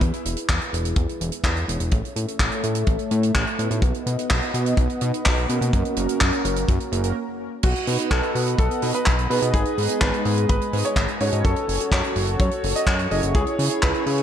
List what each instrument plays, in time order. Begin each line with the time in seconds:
Already playing: analog polysynth B3 E4 G#4 B4
0.01 analog synth bass E2, analog synth pad E4 G#4 B4, kick, closed hi-hat
0.14 closed hi-hat
0.25 analog synth bass E1, analog polysynth B3 E4 G#4 B4, closed hi-hat
0.37 closed hi-hat
0.49 analog synth bass E2, kick, clap, closed hi-hat
0.61 closed hi-hat
0.73 analog synth bass E1, analog polysynth B3 E4 G#4 B4, closed hi-hat
0.85 closed hi-hat
0.96 analog synth bass E2, kick, closed hi-hat
1.09 closed hi-hat
1.21 analog synth bass E1, analog polysynth B3 E4 G#4 B4, closed hi-hat
1.32 closed hi-hat
1.44 analog synth bass E2, kick, clap, closed hi-hat
1.57 closed hi-hat
1.68 analog synth bass E1, analog polysynth C#4 E4 A4 C#5, closed hi-hat
1.80 analog synth bass E1, closed hi-hat
1.91 analog synth bass A1, analog synth pad A3 A4 C#5 E5, kick, closed hi-hat
2.05 closed hi-hat
2.16 analog synth bass A2, analog polysynth C#4 E4 A4 C#5, closed hi-hat
2.28 closed hi-hat
2.39 analog synth bass A1, kick, clap, closed hi-hat
2.52 closed hi-hat
2.63 analog synth bass A2, analog polysynth C#4 E4 A4 C#5, closed hi-hat
2.75 closed hi-hat
2.87 analog synth bass A1, kick, closed hi-hat
2.99 closed hi-hat
3.11 analog synth bass A2, analog polysynth C#4 E4 A4 C#5, closed hi-hat
3.23 closed hi-hat
3.35 analog synth bass A1, kick, clap, closed hi-hat
3.47 closed hi-hat
3.59 analog synth bass A2, analog polysynth B3 D#4 F#4 B4, closed hi-hat
3.71 analog synth bass A2, closed hi-hat
3.82 analog synth bass B1, analog synth pad B3 B4 D#5 F#5, kick, closed hi-hat
3.94 closed hi-hat
4.06 analog synth bass B2, analog polysynth B3 D#4 F#4 B4, closed hi-hat
4.19 closed hi-hat
4.30 analog synth bass B1, kick, clap, closed hi-hat
4.42 closed hi-hat
4.54 analog synth bass B2, analog polysynth B3 D#4 F#4 B4, closed hi-hat
4.66 closed hi-hat
4.77 analog synth bass B1, kick, closed hi-hat
4.90 closed hi-hat
5.01 analog synth bass B2, analog polysynth B3 D#4 F#4 B4, closed hi-hat
5.14 closed hi-hat
5.25 analog synth bass B1, kick, clap, closed hi-hat
5.38 closed hi-hat
5.49 analog synth bass B2, analog polysynth A#3 C#4 F#4 A#4, closed hi-hat
5.61 analog synth bass B2, closed hi-hat
5.73 analog synth bass F#2, analog synth pad C#4 F#4 A#4, kick, closed hi-hat
5.85 closed hi-hat
5.97 analog synth bass F#1, analog polysynth A#3 C#4 F#4 A#4, closed hi-hat
6.09 closed hi-hat
6.20 analog synth bass F#2, kick, clap, closed hi-hat
6.32 closed hi-hat
6.44 analog synth bass F#1, analog polysynth A#3 C#4 F#4 A#4, closed hi-hat
6.56 closed hi-hat
6.68 analog synth bass F#2, kick, closed hi-hat
6.80 closed hi-hat
6.92 analog synth bass F#1, analog polysynth A#3 C#4 F#4 A#4, closed hi-hat
7.04 analog polysynth A#3 C#4 F#4 A#4, closed hi-hat
7.63 analog synth bass B1, analog synth pad B3 B4 D#5 F#5, grand piano F#4, kick, closed hi-hat, crash
7.76 closed hi-hat
7.87 analog synth bass B2, analog polysynth B3 D#4 F#4 B4, open hi-hat
8.00 closed hi-hat
8.11 analog synth bass B1, grand piano A4, kick, clap, closed hi-hat
8.23 closed hi-hat
8.35 analog synth bass B2, analog polysynth B3 D#4 F#4 B4, open hi-hat
8.48 closed hi-hat
8.59 analog synth bass B1, grand piano A4, kick, closed hi-hat
8.71 closed hi-hat
8.82 analog synth bass B2, analog polysynth B3 D#4 F#4 B4, open hi-hat
8.94 grand piano B4, closed hi-hat
9.06 analog synth bass B1, kick, clap, closed hi-hat
9.19 closed hi-hat
9.30 analog synth bass B2, analog polysynth B3 D#4 G#4 B4, grand piano B4, open hi-hat
9.42 analog synth bass B2, closed hi-hat
9.54 analog synth bass G#1, analog synth pad G#3 G#4, grand piano G#4, kick, closed hi-hat
9.65 closed hi-hat
9.78 analog synth bass G#2, analog polysynth B3 D#4 G#4 B4, open hi-hat
9.89 closed hi-hat
10.01 analog synth bass G#1, grand piano B4, kick, clap, closed hi-hat
10.14 closed hi-hat
10.25 analog synth bass G#2, analog polysynth B3 D#4 G#4 B4, open hi-hat
10.38 closed hi-hat
10.49 analog synth bass G#1, grand piano B4, kick, closed hi-hat
10.61 closed hi-hat
10.73 analog synth bass G#2, analog polysynth B3 D#4 G#4 B4, open hi-hat
10.85 grand piano C#5, closed hi-hat
10.96 analog synth bass G#1, kick, clap, closed hi-hat
11.08 closed hi-hat
11.20 analog synth bass G#2, analog polysynth C#4 F#4 A4 C#5, grand piano C#5, open hi-hat
11.33 analog synth bass G#2, closed hi-hat
11.44 analog synth bass F#2, analog synth pad F#4 A4 C#5, grand piano A4, kick, closed hi-hat
11.56 closed hi-hat
11.68 analog synth bass F#1, analog polysynth C#4 F#4 A4 C#5, open hi-hat
11.80 closed hi-hat
11.92 analog synth bass F#2, grand piano C#5, kick, clap, closed hi-hat
12.04 closed hi-hat
12.16 analog synth bass F#1, analog polysynth C#4 F#4 A4 C#5, open hi-hat
12.27 closed hi-hat
12.39 analog synth bass F#2, grand piano C#5, kick, closed hi-hat
12.51 closed hi-hat
12.63 analog synth bass F#1, analog polysynth C#4 F#4 A4 C#5, open hi-hat
12.76 grand piano D#5, closed hi-hat
12.87 analog synth bass F#2, kick, clap, closed hi-hat
12.99 closed hi-hat
13.11 analog synth bass F#1, analog polysynth C#4 E4 G#4 C#5, grand piano D#5, open hi-hat
13.23 analog synth bass F#1, closed hi-hat
13.35 analog synth bass C#2, analog synth pad E4 G#4, grand piano G#4, kick, closed hi-hat
13.47 closed hi-hat
13.59 analog synth bass C#3, analog polysynth C#4 E4 G#4 C#5, open hi-hat
13.71 closed hi-hat
13.82 analog synth bass C#2, grand piano B4, kick, clap, closed hi-hat
13.94 closed hi-hat
14.06 analog synth bass C#3, analog polysynth C#4 E4 G#4 C#5, open hi-hat
14.18 closed hi-hat